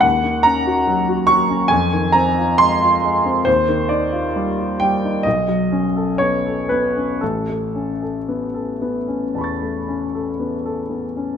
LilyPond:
<<
  \new Staff \with { instrumentName = "Grand piano" } { \time 4/4 \key a \lydian \tempo 4 = 66 << { r1 | r1 | r2 <a'' b'' cis''' a'''>2 | } \\ { fis''8 ais''4 cis'''8 aes''8 bes''8 c'''4 | c''8 d''4 g''8 dis''4 cis''8 b'8 | a'2.~ a'8 r8 | } >> }
  \new Staff \with { instrumentName = "Grand piano" } { \time 4/4 \key a \lydian dis,16 dis16 cis'16 fis'16 fis16 fis'16 fis16 cis'16 f,16 ees16 c'16 f'16 aes16 f'16 aes16 c'16 | dis,16 dis16 dis'16 eis'16 g16 eis'16 g16 dis'16 b,,16 fis16 cis'16 a'16 b16 a'16 b16 cis'16 | a,,16 a16 cis'16 a'16 b16 a'16 b16 cis'16 e,16 a16 cis'16 a'16 b16 a'16 b16 cis'16 | }
>>